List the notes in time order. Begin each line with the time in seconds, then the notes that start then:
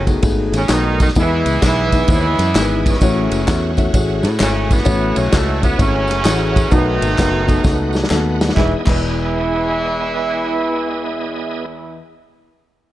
Already playing: F#1 D#3 F#3
0.07 A3 B3 D#4 F#4 G#4, kick, ride bell, tambourine
0.22 G#1 A3 B3 D#4 F#4 G#4, kick, ride bell, tambourine
0.52 A1 C#3 C#4, snare, ride bell, tambourine
0.68 B1 D#3 A3 B3 D#4 F#4 B4, snare, clap, ride bell, tambourine
1.00 D#3 D#4, kick, ride bell, tambourine
1.08 snare
1.15 E2 E3 G#3 B3 E4 A4 B4 D#5 G#5, kick, ride bell, tambourine
1.20 E3 E4 B4
1.46 C#2, ride bell, tambourine
1.62 B1 E3 G#3 B3 D#4 E4 B4, kick, snare, clap, ride bell, tambourine
1.92 G#3 B3 D#4 E4 B4, kick, ride bell, tambourine
2.08 D#2 G#3 B3 E4 C5 D#5, kick, ride bell, tambourine
2.12 E3 E4 C#5
2.38 F#2, snare, ride bell, tambourine
2.55 G#1 G#3 B3 D#4 E4 A#4, snare, clap, ride bell, tambourine
2.62 B4
2.86 C#3 E3 F#3 C#4, kick, ride bell, tambourine
2.94 snare
3.01 A1 A2 A3 C#4 E4 F#4 C#5 E5 F#5, kick, ride bell, tambourine
3.30 F#1, ride bell, tambourine
3.46 E2 A3 C#4 E4 F#4 C#5, kick, snare, clap, ride bell, tambourine
3.77 A3 C#4 E4 F#4 E5, kick, ride bell, tambourine
3.94 A1 A3 C#4 E4 F#4 G#4, kick, ride bell, tambourine
4.23 A2, snare, ride bell, tambourine
4.39 G#1 C#3 A3 C#4 E4 F#4 C#5, snare, clap, ride bell, tambourine
4.71 E3 F#3 B3, kick, ride bell, tambourine
4.78 snare
4.85 A1 A2 A3 C#4 E4 F#4 C#5 E5 F#5, kick, ride bell, tambourine
5.16 B1 C#3 C#4, ride bell, tambourine
5.32 C#2 A3 C#4 E4 F#4 D#5, kick, snare, clap, ride bell, tambourine
5.61 A3 B3 C#4 E4 F#4 C#5, kick, ride bell, tambourine
5.78 G#1 C#3 E3 F#3 A3 C#4 E4 F#4 C#5, kick, ride bell, tambourine
6.07 F#1, snare, ride bell, tambourine
6.25 A1 A3 C#4 E4 F#4 G#4, snare, clap, ride bell, tambourine
6.56 kick, ride bell, tambourine
6.71 B1 B2 D#3 F#3 A3 B3 D#4 F#4 A4 B4 D#5, kick, ride bell, tambourine
6.78 B4
7.02 G#1, ride bell, tambourine
7.18 F#1 A3 B3 D#4 F#4 B4, kick, snare, clap, ride bell, tambourine
7.47 A3 B3 D#4 F#4 A4, kick, ride bell, tambourine
7.63 C#2 A3 B3 C#4 F#4 A4, kick, snare, tambourine
7.69 D#4
7.93 snare, tambourine
8.04 snare
8.10 D#2 A3 B3 D#4 F#4 A4, snare, clap, tambourine
8.41 snare, tambourine
8.49 snare
8.55 E1 E2 E3 G#3 B3 D#4 E4 G#4 D#5, kick, snare, clap
8.59 B4
8.85 E1 E2 E3 G#3 E4 B4 D#5, kick, clap, crash